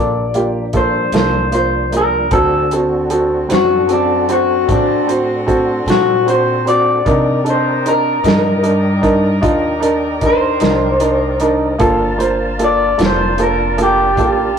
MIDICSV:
0, 0, Header, 1, 7, 480
1, 0, Start_track
1, 0, Key_signature, -2, "minor"
1, 0, Tempo, 789474
1, 1411, Time_signature, 12, 3, 24, 8
1, 8870, End_track
2, 0, Start_track
2, 0, Title_t, "Clean electric guitar"
2, 0, Program_c, 0, 27
2, 0, Note_on_c, 0, 74, 82
2, 442, Note_off_c, 0, 74, 0
2, 466, Note_on_c, 0, 72, 78
2, 692, Note_off_c, 0, 72, 0
2, 711, Note_on_c, 0, 72, 76
2, 934, Note_off_c, 0, 72, 0
2, 940, Note_on_c, 0, 72, 74
2, 1168, Note_off_c, 0, 72, 0
2, 1197, Note_on_c, 0, 70, 71
2, 1415, Note_off_c, 0, 70, 0
2, 1418, Note_on_c, 0, 69, 85
2, 1647, Note_off_c, 0, 69, 0
2, 2144, Note_on_c, 0, 66, 71
2, 2370, Note_off_c, 0, 66, 0
2, 2385, Note_on_c, 0, 62, 72
2, 2611, Note_off_c, 0, 62, 0
2, 2627, Note_on_c, 0, 66, 69
2, 2852, Note_off_c, 0, 66, 0
2, 2870, Note_on_c, 0, 62, 78
2, 3093, Note_off_c, 0, 62, 0
2, 3588, Note_on_c, 0, 66, 88
2, 3812, Note_off_c, 0, 66, 0
2, 3830, Note_on_c, 0, 72, 77
2, 4053, Note_off_c, 0, 72, 0
2, 4063, Note_on_c, 0, 74, 89
2, 4522, Note_off_c, 0, 74, 0
2, 4562, Note_on_c, 0, 72, 71
2, 4779, Note_off_c, 0, 72, 0
2, 4794, Note_on_c, 0, 70, 90
2, 5248, Note_off_c, 0, 70, 0
2, 6239, Note_on_c, 0, 72, 96
2, 7641, Note_off_c, 0, 72, 0
2, 7687, Note_on_c, 0, 74, 91
2, 7902, Note_off_c, 0, 74, 0
2, 7939, Note_on_c, 0, 72, 78
2, 8148, Note_off_c, 0, 72, 0
2, 8163, Note_on_c, 0, 70, 82
2, 8380, Note_off_c, 0, 70, 0
2, 8406, Note_on_c, 0, 67, 95
2, 8855, Note_off_c, 0, 67, 0
2, 8870, End_track
3, 0, Start_track
3, 0, Title_t, "Upright piano"
3, 0, Program_c, 1, 0
3, 0, Note_on_c, 1, 58, 51
3, 0, Note_on_c, 1, 65, 42
3, 0, Note_on_c, 1, 69, 56
3, 147, Note_off_c, 1, 58, 0
3, 147, Note_off_c, 1, 65, 0
3, 151, Note_off_c, 1, 69, 0
3, 210, Note_on_c, 1, 58, 51
3, 212, Note_on_c, 1, 65, 51
3, 216, Note_on_c, 1, 67, 57
3, 391, Note_off_c, 1, 58, 0
3, 391, Note_off_c, 1, 65, 0
3, 394, Note_off_c, 1, 67, 0
3, 445, Note_on_c, 1, 65, 47
3, 448, Note_on_c, 1, 58, 54
3, 452, Note_on_c, 1, 69, 58
3, 628, Note_off_c, 1, 65, 0
3, 630, Note_off_c, 1, 58, 0
3, 632, Note_off_c, 1, 69, 0
3, 688, Note_on_c, 1, 58, 54
3, 692, Note_on_c, 1, 65, 44
3, 695, Note_on_c, 1, 69, 56
3, 870, Note_off_c, 1, 58, 0
3, 871, Note_off_c, 1, 65, 0
3, 873, Note_off_c, 1, 69, 0
3, 922, Note_on_c, 1, 58, 48
3, 928, Note_on_c, 1, 65, 52
3, 931, Note_on_c, 1, 72, 52
3, 1106, Note_off_c, 1, 58, 0
3, 1110, Note_off_c, 1, 65, 0
3, 1111, Note_off_c, 1, 72, 0
3, 1168, Note_on_c, 1, 58, 46
3, 1172, Note_on_c, 1, 65, 46
3, 1175, Note_on_c, 1, 70, 58
3, 1349, Note_off_c, 1, 58, 0
3, 1351, Note_off_c, 1, 65, 0
3, 1353, Note_off_c, 1, 70, 0
3, 1403, Note_on_c, 1, 60, 63
3, 1411, Note_on_c, 1, 69, 73
3, 1412, Note_on_c, 1, 66, 56
3, 1587, Note_off_c, 1, 60, 0
3, 1591, Note_off_c, 1, 66, 0
3, 1591, Note_off_c, 1, 69, 0
3, 1655, Note_on_c, 1, 60, 48
3, 1660, Note_on_c, 1, 69, 55
3, 1664, Note_on_c, 1, 66, 49
3, 1833, Note_off_c, 1, 60, 0
3, 1835, Note_off_c, 1, 69, 0
3, 1837, Note_off_c, 1, 66, 0
3, 1885, Note_on_c, 1, 60, 57
3, 1890, Note_on_c, 1, 69, 67
3, 1891, Note_on_c, 1, 66, 61
3, 2068, Note_off_c, 1, 60, 0
3, 2070, Note_off_c, 1, 69, 0
3, 2071, Note_off_c, 1, 66, 0
3, 2120, Note_on_c, 1, 60, 51
3, 2123, Note_on_c, 1, 72, 56
3, 2124, Note_on_c, 1, 66, 46
3, 2305, Note_off_c, 1, 60, 0
3, 2307, Note_off_c, 1, 66, 0
3, 2307, Note_off_c, 1, 72, 0
3, 2358, Note_on_c, 1, 60, 48
3, 2364, Note_on_c, 1, 66, 45
3, 2364, Note_on_c, 1, 69, 58
3, 2544, Note_off_c, 1, 60, 0
3, 2547, Note_off_c, 1, 66, 0
3, 2547, Note_off_c, 1, 69, 0
3, 2609, Note_on_c, 1, 60, 59
3, 2609, Note_on_c, 1, 66, 51
3, 2613, Note_on_c, 1, 72, 60
3, 2790, Note_off_c, 1, 60, 0
3, 2790, Note_off_c, 1, 66, 0
3, 2792, Note_off_c, 1, 72, 0
3, 2841, Note_on_c, 1, 60, 47
3, 2847, Note_on_c, 1, 66, 46
3, 2850, Note_on_c, 1, 69, 53
3, 3026, Note_off_c, 1, 60, 0
3, 3028, Note_off_c, 1, 66, 0
3, 3030, Note_off_c, 1, 69, 0
3, 3084, Note_on_c, 1, 60, 57
3, 3090, Note_on_c, 1, 66, 46
3, 3092, Note_on_c, 1, 72, 56
3, 3267, Note_off_c, 1, 60, 0
3, 3270, Note_off_c, 1, 66, 0
3, 3271, Note_off_c, 1, 72, 0
3, 3323, Note_on_c, 1, 60, 65
3, 3327, Note_on_c, 1, 66, 62
3, 3329, Note_on_c, 1, 69, 78
3, 3507, Note_off_c, 1, 60, 0
3, 3508, Note_off_c, 1, 66, 0
3, 3509, Note_off_c, 1, 69, 0
3, 3571, Note_on_c, 1, 60, 53
3, 3571, Note_on_c, 1, 66, 50
3, 3572, Note_on_c, 1, 69, 55
3, 3750, Note_off_c, 1, 60, 0
3, 3750, Note_off_c, 1, 66, 0
3, 3751, Note_off_c, 1, 69, 0
3, 3807, Note_on_c, 1, 60, 58
3, 3813, Note_on_c, 1, 66, 54
3, 3816, Note_on_c, 1, 72, 60
3, 3988, Note_off_c, 1, 60, 0
3, 3991, Note_off_c, 1, 66, 0
3, 3993, Note_off_c, 1, 72, 0
3, 4045, Note_on_c, 1, 60, 50
3, 4050, Note_on_c, 1, 72, 59
3, 4051, Note_on_c, 1, 66, 51
3, 4227, Note_off_c, 1, 60, 0
3, 4230, Note_off_c, 1, 72, 0
3, 4231, Note_off_c, 1, 66, 0
3, 4287, Note_on_c, 1, 62, 67
3, 4296, Note_on_c, 1, 63, 61
3, 4299, Note_on_c, 1, 70, 76
3, 4469, Note_off_c, 1, 62, 0
3, 4473, Note_off_c, 1, 63, 0
3, 4474, Note_off_c, 1, 70, 0
3, 4522, Note_on_c, 1, 62, 54
3, 4527, Note_on_c, 1, 69, 54
3, 4529, Note_on_c, 1, 63, 46
3, 4706, Note_off_c, 1, 62, 0
3, 4709, Note_off_c, 1, 63, 0
3, 4709, Note_off_c, 1, 69, 0
3, 4773, Note_on_c, 1, 63, 54
3, 4775, Note_on_c, 1, 62, 53
3, 4780, Note_on_c, 1, 70, 57
3, 4952, Note_off_c, 1, 62, 0
3, 4952, Note_off_c, 1, 63, 0
3, 4955, Note_off_c, 1, 70, 0
3, 5004, Note_on_c, 1, 62, 50
3, 5011, Note_on_c, 1, 63, 48
3, 5012, Note_on_c, 1, 70, 63
3, 5187, Note_off_c, 1, 62, 0
3, 5190, Note_off_c, 1, 63, 0
3, 5191, Note_off_c, 1, 70, 0
3, 5245, Note_on_c, 1, 62, 55
3, 5245, Note_on_c, 1, 63, 52
3, 5249, Note_on_c, 1, 70, 59
3, 5427, Note_off_c, 1, 63, 0
3, 5428, Note_off_c, 1, 62, 0
3, 5429, Note_off_c, 1, 70, 0
3, 5482, Note_on_c, 1, 62, 73
3, 5487, Note_on_c, 1, 63, 62
3, 5490, Note_on_c, 1, 70, 79
3, 5666, Note_off_c, 1, 62, 0
3, 5669, Note_off_c, 1, 63, 0
3, 5670, Note_off_c, 1, 70, 0
3, 5723, Note_on_c, 1, 62, 66
3, 5724, Note_on_c, 1, 63, 59
3, 5729, Note_on_c, 1, 65, 70
3, 5906, Note_off_c, 1, 62, 0
3, 5907, Note_off_c, 1, 63, 0
3, 5909, Note_off_c, 1, 65, 0
3, 5958, Note_on_c, 1, 62, 65
3, 5960, Note_on_c, 1, 63, 61
3, 5967, Note_on_c, 1, 70, 75
3, 6144, Note_off_c, 1, 62, 0
3, 6145, Note_off_c, 1, 63, 0
3, 6148, Note_off_c, 1, 70, 0
3, 6210, Note_on_c, 1, 62, 57
3, 6212, Note_on_c, 1, 63, 51
3, 6218, Note_on_c, 1, 70, 63
3, 6390, Note_off_c, 1, 62, 0
3, 6391, Note_off_c, 1, 63, 0
3, 6394, Note_off_c, 1, 70, 0
3, 6446, Note_on_c, 1, 63, 53
3, 6447, Note_on_c, 1, 62, 56
3, 6451, Note_on_c, 1, 70, 62
3, 6628, Note_off_c, 1, 63, 0
3, 6629, Note_off_c, 1, 62, 0
3, 6630, Note_off_c, 1, 70, 0
3, 6689, Note_on_c, 1, 62, 54
3, 6691, Note_on_c, 1, 63, 49
3, 6692, Note_on_c, 1, 70, 63
3, 6869, Note_off_c, 1, 62, 0
3, 6871, Note_off_c, 1, 63, 0
3, 6871, Note_off_c, 1, 70, 0
3, 6932, Note_on_c, 1, 62, 69
3, 6935, Note_on_c, 1, 63, 57
3, 6939, Note_on_c, 1, 70, 72
3, 7111, Note_off_c, 1, 62, 0
3, 7113, Note_off_c, 1, 63, 0
3, 7115, Note_off_c, 1, 70, 0
3, 7165, Note_on_c, 1, 58, 73
3, 7168, Note_on_c, 1, 65, 72
3, 7174, Note_on_c, 1, 69, 89
3, 7348, Note_off_c, 1, 58, 0
3, 7350, Note_off_c, 1, 65, 0
3, 7352, Note_off_c, 1, 69, 0
3, 7404, Note_on_c, 1, 58, 57
3, 7405, Note_on_c, 1, 65, 54
3, 7412, Note_on_c, 1, 72, 71
3, 7587, Note_off_c, 1, 58, 0
3, 7588, Note_off_c, 1, 65, 0
3, 7591, Note_off_c, 1, 72, 0
3, 7653, Note_on_c, 1, 58, 52
3, 7659, Note_on_c, 1, 65, 49
3, 7660, Note_on_c, 1, 69, 63
3, 7832, Note_off_c, 1, 58, 0
3, 7835, Note_off_c, 1, 65, 0
3, 7835, Note_off_c, 1, 69, 0
3, 7890, Note_on_c, 1, 58, 53
3, 7890, Note_on_c, 1, 65, 51
3, 7893, Note_on_c, 1, 69, 57
3, 8070, Note_off_c, 1, 58, 0
3, 8071, Note_off_c, 1, 65, 0
3, 8072, Note_off_c, 1, 69, 0
3, 8136, Note_on_c, 1, 58, 54
3, 8141, Note_on_c, 1, 65, 50
3, 8144, Note_on_c, 1, 69, 66
3, 8314, Note_off_c, 1, 58, 0
3, 8316, Note_off_c, 1, 65, 0
3, 8318, Note_off_c, 1, 69, 0
3, 8375, Note_on_c, 1, 58, 62
3, 8380, Note_on_c, 1, 65, 54
3, 8380, Note_on_c, 1, 69, 66
3, 8553, Note_off_c, 1, 58, 0
3, 8555, Note_off_c, 1, 69, 0
3, 8556, Note_off_c, 1, 65, 0
3, 8624, Note_on_c, 1, 65, 54
3, 8626, Note_on_c, 1, 58, 52
3, 8630, Note_on_c, 1, 69, 58
3, 8798, Note_off_c, 1, 65, 0
3, 8799, Note_off_c, 1, 58, 0
3, 8801, Note_off_c, 1, 69, 0
3, 8870, End_track
4, 0, Start_track
4, 0, Title_t, "Horn section"
4, 0, Program_c, 2, 61
4, 1405, Note_on_c, 2, 66, 88
4, 1414, Note_on_c, 2, 60, 72
4, 4263, Note_off_c, 2, 66, 0
4, 4267, Note_off_c, 2, 60, 0
4, 4295, Note_on_c, 2, 70, 82
4, 4297, Note_on_c, 2, 63, 70
4, 7149, Note_off_c, 2, 70, 0
4, 7150, Note_off_c, 2, 63, 0
4, 7170, Note_on_c, 2, 65, 70
4, 7173, Note_on_c, 2, 58, 74
4, 8870, Note_off_c, 2, 58, 0
4, 8870, Note_off_c, 2, 65, 0
4, 8870, End_track
5, 0, Start_track
5, 0, Title_t, "Tonewheel organ"
5, 0, Program_c, 3, 16
5, 0, Note_on_c, 3, 53, 66
5, 0, Note_on_c, 3, 55, 65
5, 0, Note_on_c, 3, 58, 66
5, 0, Note_on_c, 3, 62, 66
5, 1390, Note_off_c, 3, 53, 0
5, 1390, Note_off_c, 3, 62, 0
5, 1393, Note_off_c, 3, 58, 0
5, 1394, Note_off_c, 3, 55, 0
5, 1413, Note_on_c, 3, 62, 64
5, 1414, Note_on_c, 3, 66, 66
5, 1414, Note_on_c, 3, 69, 64
5, 1420, Note_on_c, 3, 60, 68
5, 4267, Note_off_c, 3, 62, 0
5, 4267, Note_off_c, 3, 66, 0
5, 4267, Note_off_c, 3, 69, 0
5, 4270, Note_off_c, 3, 60, 0
5, 4286, Note_on_c, 3, 70, 63
5, 4289, Note_on_c, 3, 67, 62
5, 4290, Note_on_c, 3, 63, 65
5, 4290, Note_on_c, 3, 74, 66
5, 7144, Note_off_c, 3, 70, 0
5, 7146, Note_off_c, 3, 63, 0
5, 7146, Note_off_c, 3, 67, 0
5, 7146, Note_off_c, 3, 74, 0
5, 7167, Note_on_c, 3, 70, 71
5, 7170, Note_on_c, 3, 62, 68
5, 7173, Note_on_c, 3, 81, 62
5, 7174, Note_on_c, 3, 65, 65
5, 8870, Note_off_c, 3, 62, 0
5, 8870, Note_off_c, 3, 65, 0
5, 8870, Note_off_c, 3, 70, 0
5, 8870, Note_off_c, 3, 81, 0
5, 8870, End_track
6, 0, Start_track
6, 0, Title_t, "Upright bass"
6, 0, Program_c, 4, 32
6, 0, Note_on_c, 4, 34, 82
6, 668, Note_off_c, 4, 34, 0
6, 681, Note_on_c, 4, 36, 84
6, 1384, Note_off_c, 4, 36, 0
6, 1406, Note_on_c, 4, 38, 85
6, 2106, Note_off_c, 4, 38, 0
6, 2130, Note_on_c, 4, 42, 84
6, 2828, Note_off_c, 4, 42, 0
6, 2849, Note_on_c, 4, 45, 81
6, 3548, Note_off_c, 4, 45, 0
6, 3563, Note_on_c, 4, 46, 89
6, 4265, Note_off_c, 4, 46, 0
6, 4294, Note_on_c, 4, 48, 81
6, 4990, Note_off_c, 4, 48, 0
6, 5007, Note_on_c, 4, 43, 94
6, 5707, Note_off_c, 4, 43, 0
6, 5732, Note_on_c, 4, 39, 86
6, 6430, Note_off_c, 4, 39, 0
6, 6454, Note_on_c, 4, 36, 80
6, 7151, Note_off_c, 4, 36, 0
6, 7174, Note_on_c, 4, 31, 84
6, 7871, Note_off_c, 4, 31, 0
6, 7899, Note_on_c, 4, 29, 96
6, 8594, Note_off_c, 4, 29, 0
6, 8617, Note_on_c, 4, 33, 80
6, 8870, Note_off_c, 4, 33, 0
6, 8870, End_track
7, 0, Start_track
7, 0, Title_t, "Drums"
7, 208, Note_on_c, 9, 42, 51
7, 268, Note_off_c, 9, 42, 0
7, 444, Note_on_c, 9, 42, 61
7, 448, Note_on_c, 9, 36, 79
7, 505, Note_off_c, 9, 42, 0
7, 509, Note_off_c, 9, 36, 0
7, 684, Note_on_c, 9, 42, 78
7, 698, Note_on_c, 9, 38, 101
7, 744, Note_off_c, 9, 42, 0
7, 759, Note_off_c, 9, 38, 0
7, 926, Note_on_c, 9, 42, 55
7, 987, Note_off_c, 9, 42, 0
7, 1170, Note_on_c, 9, 42, 58
7, 1231, Note_off_c, 9, 42, 0
7, 1405, Note_on_c, 9, 42, 89
7, 1408, Note_on_c, 9, 36, 110
7, 1465, Note_off_c, 9, 42, 0
7, 1469, Note_off_c, 9, 36, 0
7, 1650, Note_on_c, 9, 42, 56
7, 1710, Note_off_c, 9, 42, 0
7, 1885, Note_on_c, 9, 42, 62
7, 1946, Note_off_c, 9, 42, 0
7, 2127, Note_on_c, 9, 42, 86
7, 2142, Note_on_c, 9, 38, 106
7, 2188, Note_off_c, 9, 42, 0
7, 2202, Note_off_c, 9, 38, 0
7, 2365, Note_on_c, 9, 42, 63
7, 2426, Note_off_c, 9, 42, 0
7, 2607, Note_on_c, 9, 42, 62
7, 2668, Note_off_c, 9, 42, 0
7, 2850, Note_on_c, 9, 36, 114
7, 2850, Note_on_c, 9, 42, 86
7, 2911, Note_off_c, 9, 36, 0
7, 2911, Note_off_c, 9, 42, 0
7, 3095, Note_on_c, 9, 42, 58
7, 3156, Note_off_c, 9, 42, 0
7, 3331, Note_on_c, 9, 36, 72
7, 3335, Note_on_c, 9, 42, 55
7, 3392, Note_off_c, 9, 36, 0
7, 3396, Note_off_c, 9, 42, 0
7, 3573, Note_on_c, 9, 42, 74
7, 3588, Note_on_c, 9, 38, 109
7, 3634, Note_off_c, 9, 42, 0
7, 3648, Note_off_c, 9, 38, 0
7, 3818, Note_on_c, 9, 42, 57
7, 3878, Note_off_c, 9, 42, 0
7, 4057, Note_on_c, 9, 42, 50
7, 4117, Note_off_c, 9, 42, 0
7, 4293, Note_on_c, 9, 36, 115
7, 4295, Note_on_c, 9, 42, 79
7, 4354, Note_off_c, 9, 36, 0
7, 4356, Note_off_c, 9, 42, 0
7, 4535, Note_on_c, 9, 42, 55
7, 4596, Note_off_c, 9, 42, 0
7, 4778, Note_on_c, 9, 42, 63
7, 4839, Note_off_c, 9, 42, 0
7, 5012, Note_on_c, 9, 42, 76
7, 5027, Note_on_c, 9, 38, 109
7, 5073, Note_off_c, 9, 42, 0
7, 5087, Note_off_c, 9, 38, 0
7, 5251, Note_on_c, 9, 42, 56
7, 5311, Note_off_c, 9, 42, 0
7, 5491, Note_on_c, 9, 36, 79
7, 5493, Note_on_c, 9, 42, 62
7, 5552, Note_off_c, 9, 36, 0
7, 5554, Note_off_c, 9, 42, 0
7, 5732, Note_on_c, 9, 36, 102
7, 5732, Note_on_c, 9, 42, 91
7, 5793, Note_off_c, 9, 36, 0
7, 5793, Note_off_c, 9, 42, 0
7, 5974, Note_on_c, 9, 42, 63
7, 6035, Note_off_c, 9, 42, 0
7, 6210, Note_on_c, 9, 42, 67
7, 6212, Note_on_c, 9, 36, 77
7, 6271, Note_off_c, 9, 42, 0
7, 6273, Note_off_c, 9, 36, 0
7, 6445, Note_on_c, 9, 42, 83
7, 6460, Note_on_c, 9, 38, 97
7, 6506, Note_off_c, 9, 42, 0
7, 6521, Note_off_c, 9, 38, 0
7, 6688, Note_on_c, 9, 42, 65
7, 6749, Note_off_c, 9, 42, 0
7, 6930, Note_on_c, 9, 42, 54
7, 6990, Note_off_c, 9, 42, 0
7, 7171, Note_on_c, 9, 42, 84
7, 7174, Note_on_c, 9, 36, 109
7, 7232, Note_off_c, 9, 42, 0
7, 7235, Note_off_c, 9, 36, 0
7, 7418, Note_on_c, 9, 42, 61
7, 7479, Note_off_c, 9, 42, 0
7, 7657, Note_on_c, 9, 42, 64
7, 7718, Note_off_c, 9, 42, 0
7, 7897, Note_on_c, 9, 42, 75
7, 7911, Note_on_c, 9, 38, 116
7, 7958, Note_off_c, 9, 42, 0
7, 7972, Note_off_c, 9, 38, 0
7, 8136, Note_on_c, 9, 42, 54
7, 8197, Note_off_c, 9, 42, 0
7, 8380, Note_on_c, 9, 42, 55
7, 8441, Note_off_c, 9, 42, 0
7, 8617, Note_on_c, 9, 36, 107
7, 8621, Note_on_c, 9, 42, 78
7, 8678, Note_off_c, 9, 36, 0
7, 8682, Note_off_c, 9, 42, 0
7, 8870, End_track
0, 0, End_of_file